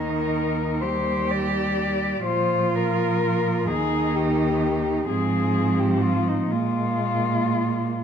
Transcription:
0.00 2.22 D#2 medium
0.00 0.84 D#3 medium
0.00 0.83 D#4 medium
0.00 0.82 A#4 medium
0.81 2.26 G3 soft
0.81 2.24 G4 medium
0.81 1.32 C5 medium
1.30 2.25 D5 medium
2.25 3.69 A#2 medium
2.25 3.70 F3 medium
2.25 3.69 F4 medium
2.25 2.77 C5 medium
2.75 3.68 A#4 medium
3.67 5.09 D#2 medium
3.67 5.08 D#3 medium
3.67 5.08 D#4 medium
3.67 4.16 G#4 medium
4.15 5.07 G4 medium
5.08 6.50 G#2 medium
5.08 6.53 F3 medium
5.08 6.48 C4 medium
5.08 5.80 G#4 medium
5.79 6.05 G4 medium
6.03 6.29 F4 medium
6.28 6.53 D#4 medium
6.50 8.01 A#2 medium
6.50 8.04 G#3 medium
6.50 8.01 A#3 medium
6.50 8.04 F4 medium

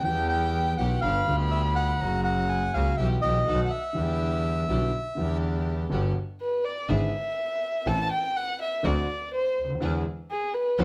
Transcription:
0.04 0.75 E2 medium
0.04 0.75 E3 medium
0.04 0.74 G3 medium
0.04 0.74 B3 medium
0.04 0.75 B3 medium
0.04 0.75 E4 medium
0.04 0.75 G4 medium
0.04 1.04 G5 medium
0.04 0.27 G5 loud
0.08 0.76 G4 medium
0.29 0.75 G5 medium
0.78 0.99 B1 medium
0.78 0.99 B2 medium
0.78 0.99 E3 medium
0.78 0.99 G3 medium
0.78 0.99 B3 medium
0.78 0.99 E4 medium
0.78 0.99 G4 medium
0.78 1.01 F#5 medium
1.01 1.23 G1 medium
1.01 1.23 G2 medium
1.01 1.23 D3 medium
1.01 1.23 G3 medium
1.01 1.23 B3 medium
1.01 1.23 F4 medium
1.01 1.24 F4 medium
1.01 1.24 G4 medium
1.01 1.36 F5 medium
1.01 2.02 B5 medium
1.26 1.97 D2 medium
1.26 1.97 D3 medium
1.26 1.96 G3 medium
1.26 1.96 B3 medium
1.26 1.97 B3 medium
1.26 1.96 F4 medium
1.26 1.98 F4 medium
1.26 1.97 G4 medium
1.51 1.62 E5 medium
1.75 2.21 F#5 medium
1.99 2.70 F#1 medium
1.99 2.70 F#2 medium
1.99 2.69 C#3 medium
1.99 2.70 F#3 medium
1.99 2.70 A#3 medium
1.99 2.70 C#4 medium
1.99 2.70 F#4 medium
1.99 2.50 A#5 medium
2.03 2.71 F#4 medium
2.24 2.75 F#5 medium
2.49 2.97 G#5 medium
2.74 2.94 C#2 medium
2.74 2.94 C#3 medium
2.74 2.94 F#3 medium
2.74 2.94 A#3 medium
2.74 2.94 C#4 medium
2.74 2.94 F#4 medium
2.74 2.96 F5 medium
2.97 3.18 B1 medium
2.97 3.19 B1 medium
2.97 3.19 B2 medium
2.97 3.19 E3 medium
2.97 3.19 G3 medium
2.97 3.18 B3 medium
2.97 3.19 B3 medium
2.97 3.19 E4 medium
2.97 3.19 G4 medium
2.97 3.08 E5 medium
2.97 3.43 G5 medium
3.21 3.43 B1 medium
3.21 3.43 B2 medium
3.21 3.43 E3 medium
3.21 3.43 G3 soft
3.21 3.42 B3 medium
3.21 3.43 B3 medium
3.21 3.43 E4 medium
3.21 3.43 G4 medium
3.21 3.61 D#5 medium
3.46 3.67 B1 medium
3.46 3.67 B2 medium
3.46 3.67 D#3 medium
3.46 3.67 A3 medium
3.46 3.67 B3 medium
3.46 3.67 D#4 medium
3.46 3.68 F#4 medium
3.46 3.67 A4 medium
3.46 3.92 F#5 medium
3.65 3.71 F#5 soft
3.70 5.38 E5 medium
3.93 4.64 E2 medium
3.93 4.65 E2 medium
3.93 4.64 D3 medium
3.93 4.64 E3 medium
3.93 4.64 G3 medium
3.93 4.65 B3 medium
3.93 4.65 D4 medium
3.93 4.65 E4 medium
3.93 4.66 E4 medium
3.93 4.65 G4 medium
4.68 4.89 B1 medium
4.68 4.89 B2 medium
4.68 4.89 D3 medium
4.68 4.89 G3 soft
4.68 4.89 B3 medium
4.68 4.89 D4 medium
4.68 4.89 E4 medium
4.68 4.89 G4 medium
5.15 5.87 E2 medium
5.15 5.88 E2 medium
5.15 5.86 D3 medium
5.15 5.87 E3 medium
5.15 5.87 G3 medium
5.15 5.87 B3 medium
5.15 5.88 D4 medium
5.15 5.88 E4 medium
5.15 5.88 G4 medium
5.89 6.11 G1 medium
5.89 6.12 G1 medium
5.89 6.11 G2 medium
5.89 6.11 D3 medium
5.89 6.11 G3 medium
5.89 6.11 B3 medium
5.89 6.12 B3 medium
5.89 6.11 F#4 medium
5.89 6.12 F#4 medium
5.89 6.12 G4 medium
6.41 6.66 B4 medium
6.65 6.91 D5 medium
6.88 7.10 G#1 medium
6.88 7.09 G#2 medium
6.88 7.09 D3 medium
6.88 7.09 G#3 medium
6.88 7.10 B3 medium
6.88 7.10 D4 medium
6.88 7.09 E4 medium
6.88 7.10 E4 medium
6.88 7.10 G#4 medium
6.88 7.89 E5 medium
7.86 8.07 A1 medium
7.86 8.07 A2 medium
7.86 8.07 E3 medium
7.86 8.07 A3 medium
7.86 8.07 C4 medium
7.86 8.07 E4 medium
7.86 8.07 A4 medium
7.86 8.11 A5 loud
8.12 8.38 G5 medium
8.37 8.60 F#5 loud
8.61 8.87 E5 medium
8.83 9.04 D2 medium
8.83 9.05 D2 medium
8.83 9.04 D3 medium
8.83 9.04 A3 medium
8.83 9.04 C4 medium
8.83 9.05 C4 medium
8.83 9.05 D4 medium
8.83 9.04 F#4 medium
8.83 9.05 F#4 medium
8.83 9.33 D5 medium
9.34 9.67 C5 medium
9.57 9.81 D2 medium
9.64 9.70 C#2 medium
9.70 9.76 D2 medium
9.75 9.81 D#2 medium
9.80 10.01 E2 medium
9.80 10.02 E2 medium
9.80 10.01 D3 medium
9.80 10.02 E3 medium
9.80 10.01 G#3 medium
9.80 10.02 B3 medium
9.80 10.02 D4 medium
9.80 10.02 E4 medium
9.80 10.02 G#4 medium
10.31 10.56 G#4 medium
10.54 10.81 B4 medium
10.78 10.84 E2 medium
10.78 10.84 C3 medium
10.78 10.84 E3 medium
10.78 10.84 G3 medium
10.78 10.84 A3 medium
10.78 10.84 C4 medium
10.78 10.84 E4 medium
10.78 10.84 G4 medium
10.78 10.84 A4 medium
10.78 10.84 C5 medium

